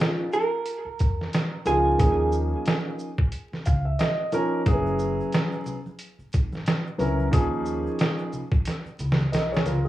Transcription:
0.00 0.40 F3 medium
0.00 0.41 A#3 medium
0.00 0.41 C#4 medium
0.00 0.41 D#4 medium
0.00 0.37 F4 medium
0.00 0.41 G#4 medium
0.00 snare loud
0.33 1.62 A#4 loud
0.33 shaker medium
0.66 closed hi-hat medium
0.85 muted upright bass stroke soft
0.99 1.27 F2 medium
0.99 kick medium
0.99 closed hi-hat medium
0.99 shaker medium
1.21 snare soft
1.33 snare medium
1.33 closed hi-hat medium
1.65 1.93 C#2 medium
1.65 1.94 F3 medium
1.65 1.94 A#3 medium
1.65 1.94 C#4 medium
1.65 1.94 D#4 medium
1.65 1.94 F4 medium
1.65 3.62 G#4 medium
1.65 closed hi-hat medium
1.65 shaker medium
1.98 2.52 D#2 loud
1.98 3.07 F3 medium
1.98 3.07 A#3 medium
1.98 3.08 C#4 medium
1.98 3.08 D#4 medium
1.98 3.08 G#4 medium
1.98 kick loud
1.98 closed hi-hat medium
2.32 shaker medium
2.66 snare loud
2.66 closed hi-hat medium
2.99 shaker medium
3.18 kick medium
3.32 closed hi-hat medium
3.52 muted upright bass stroke medium
3.52 snare soft
3.66 3.93 C#2 medium
3.66 3.84 F5 medium
3.66 kick medium
3.66 closed hi-hat medium
3.66 shaker medium
3.85 3.98 E5 medium
3.99 4.30 D#5 medium
3.99 snare loud
3.99 closed hi-hat medium
4.32 4.60 F3 medium
4.32 4.60 A#3 medium
4.32 4.61 C#4 medium
4.32 4.61 D#4 medium
4.32 4.61 A#4 medium
4.32 4.64 C#5 medium
4.32 closed hi-hat medium
4.32 shaker medium
4.66 5.19 F#1 loud
4.66 5.74 F#3 medium
4.66 4.74 A#3 medium
4.66 5.75 C#4 medium
4.66 5.75 E4 medium
4.66 5.75 G#4 medium
4.66 kick loud
4.66 closed hi-hat medium
4.66 shaker medium
4.73 5.78 B3 medium
4.86 shaker soft
4.99 shaker medium
4.99 shaker soft
5.20 shaker soft
5.32 snare loud
5.32 closed hi-hat medium
5.32 shaker medium
5.52 shaker soft
5.66 low conga medium
5.66 shaker medium
5.66 shaker soft
5.86 high conga medium
5.86 shaker soft
5.99 closed hi-hat medium
5.99 shaker medium
6.18 muted upright bass stroke soft
6.18 shaker soft
6.33 6.60 G#1 medium
6.33 kick medium
6.33 closed hi-hat medium
6.33 shaker medium
6.33 shaker soft
6.52 snare soft
6.52 high conga medium
6.52 shaker soft
6.66 snare loud
6.66 closed hi-hat medium
6.66 shaker medium
6.87 shaker soft
6.98 7.26 C#2 medium
6.98 7.27 F#3 medium
6.98 7.27 B3 medium
6.98 7.27 C#4 medium
6.98 7.27 E4 medium
6.98 7.28 A#4 medium
6.98 closed hi-hat medium
6.98 high conga soft
6.98 low conga medium
6.98 shaker medium
6.98 shaker soft
7.19 high conga medium
7.19 shaker soft
7.31 7.86 D#2 loud
7.31 8.40 F3 medium
7.31 8.41 A#3 medium
7.31 8.41 C#4 medium
7.31 8.41 D#4 medium
7.31 8.41 G#4 medium
7.31 kick loud
7.31 closed hi-hat loud
7.31 shaker medium
7.53 shaker medium
7.66 shaker medium
7.66 shaker soft
7.87 shaker soft
7.99 snare loud
7.99 closed hi-hat medium
7.99 shaker medium
8.19 shaker soft
8.33 low conga medium
8.33 shaker medium
8.33 shaker soft
8.52 kick loud
8.52 high conga medium
8.52 shaker soft
8.66 snare medium
8.66 closed hi-hat medium
8.66 shaker medium
8.85 muted upright bass stroke soft
8.85 shaker soft
8.99 9.26 C#2 medium
8.99 closed hi-hat medium
8.99 low conga medium
8.99 shaker medium
8.99 shaker soft
9.12 snare medium
9.20 high conga medium
9.20 shaker medium
9.32 9.59 B1 medium
9.32 9.51 A#4 medium
9.32 9.51 D#5 medium
9.32 snare medium
9.32 closed hi-hat medium
9.32 shaker medium
9.52 9.66 G#4 medium
9.52 9.65 C#5 medium
9.52 shaker soft
9.57 snare loud
9.66 9.88 C#2 medium
9.66 9.85 F4 medium
9.66 9.84 A#4 medium
9.66 closed hi-hat medium
9.66 high conga soft
9.66 low conga medium
9.66 shaker medium
9.66 shaker soft
9.85 9.88 G#4 medium

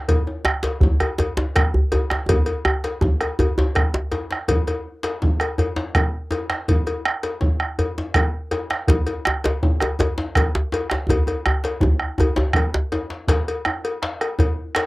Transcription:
0.08 bombo low medium
0.08 cowbell medium
0.08 djembe bass medium
0.27 djembe tone medium
0.45 bombo rim loud
0.45 djembe slap medium
0.63 cowbell soft
0.63 djembe slap medium
0.81 bombo low loud
0.81 djembe tone medium
0.81 djembe bass medium
1.00 bombo rim medium
1.00 cowbell medium
1.00 djembe tone medium
1.18 cowbell medium
1.18 djembe slap medium
1.18 djembe slap soft
1.18 djembe bass medium
1.37 djembe slap medium
1.37 djembe tone medium
1.56 bombo rim loud
1.56 bombo low loud
1.56 cowbell medium
1.56 djembe slap medium
1.74 djembe bass medium
1.92 cowbell medium
1.92 djembe tone medium
2.10 bombo rim medium
2.10 djembe slap medium
2.29 bombo low loud
2.29 cowbell medium
2.29 djembe slap soft
2.29 djembe tone loud
2.29 djembe bass medium
2.46 cowbell medium
2.46 djembe tone medium
2.65 bombo rim loud
2.65 djembe slap soft
2.65 djembe tone medium
2.84 bombo rim soft
2.84 cowbell medium
2.84 djembe slap soft
3.01 bombo low medium
3.01 djembe tone loud
3.01 djembe tone medium
3.21 bombo rim medium
3.21 cowbell medium
3.39 bombo rim soft
3.39 cowbell medium
3.39 djembe tone loud
3.39 djembe bass medium
3.58 djembe slap medium
3.58 djembe tone medium
3.75 bombo rim medium
3.75 bombo low medium
3.75 cowbell soft
3.94 bombo rim soft
3.94 djembe slap medium
3.94 djembe slap soft
4.12 bombo rim soft
4.12 cowbell soft
4.12 djembe tone medium
4.31 bombo rim medium
4.31 djembe slap medium
4.48 bombo low medium
4.48 cowbell medium
4.48 djembe bass medium
4.67 cowbell medium
4.67 djembe tone medium
5.03 cowbell medium
5.03 djembe slap medium
5.22 bombo low loud
5.22 djembe tone medium
5.40 bombo rim medium
5.40 cowbell soft
5.58 cowbell medium
5.58 djembe slap soft
5.58 djembe bass medium
5.76 djembe slap medium
5.76 djembe tone medium
5.95 bombo rim loud
5.95 bombo low loud
5.95 cowbell soft
6.31 cowbell soft
6.31 djembe tone medium
6.50 bombo rim medium
6.50 djembe slap medium
6.68 bombo low loud
6.68 cowbell medium
6.68 djembe bass medium
6.87 cowbell soft
6.87 djembe tone medium
7.05 bombo rim loud
7.23 cowbell soft
7.23 djembe slap medium
7.41 bombo low loud
7.41 djembe tone medium
7.60 bombo rim medium
7.79 cowbell medium
7.79 djembe slap soft
7.79 djembe bass medium
7.98 djembe slap medium
7.98 djembe tone medium
8.14 bombo rim loud
8.14 bombo low loud
8.14 cowbell medium
8.51 cowbell soft
8.51 djembe tone medium
8.70 bombo rim medium
8.70 djembe slap medium
8.88 bombo low loud
8.88 cowbell medium
8.88 djembe slap loud
8.88 djembe bass medium
9.07 cowbell soft
9.07 djembe tone medium
9.25 bombo rim loud
9.25 djembe slap medium
9.44 cowbell medium
9.44 djembe slap medium
9.44 djembe slap loud
9.63 bombo low loud
9.63 djembe tone medium
9.80 bombo rim medium
9.80 cowbell medium
9.80 djembe slap medium
9.99 cowbell medium
9.99 djembe slap soft
9.99 djembe slap loud
9.99 djembe bass medium
10.18 djembe slap medium
10.18 djembe tone medium
10.35 bombo rim medium
10.35 bombo low loud
10.35 cowbell medium
10.35 djembe slap medium
10.55 djembe slap loud
10.72 cowbell medium
10.72 djembe tone medium
10.90 bombo rim medium
10.90 djembe slap medium
11.09 bombo low medium
11.09 cowbell medium
11.09 djembe tone loud
11.09 djembe bass medium
11.27 cowbell medium
11.27 djembe slap soft
11.27 djembe tone medium
11.46 bombo rim loud
11.46 djembe tone loud
11.64 cowbell soft
11.64 djembe slap medium
11.80 bombo low loud
11.80 djembe tone medium
11.83 djembe tone loud
11.99 bombo rim medium
12.18 bombo rim soft
12.18 cowbell medium
12.18 djembe tone loud
12.18 djembe bass medium
12.36 bombo rim soft
12.36 djembe slap medium
12.36 djembe tone medium
12.53 bombo rim loud
12.53 bombo low loud
12.53 cowbell soft
12.74 djembe slap loud
12.92 cowbell medium
12.92 djembe tone medium
13.10 djembe slap medium
13.28 bombo low medium
13.28 cowbell medium
13.28 djembe slap medium
13.28 djembe bass medium
13.48 cowbell medium
13.65 bombo rim medium
13.65 djembe tone medium
13.84 bombo rim soft
13.84 cowbell medium
14.02 bombo rim soft
14.02 djembe slap medium
14.21 bombo rim medium
14.21 cowbell soft
14.39 bombo low medium
14.39 cowbell medium
14.39 djembe tone medium
14.39 djembe bass medium
14.75 bombo rim medium
14.75 cowbell medium
14.75 djembe slap medium

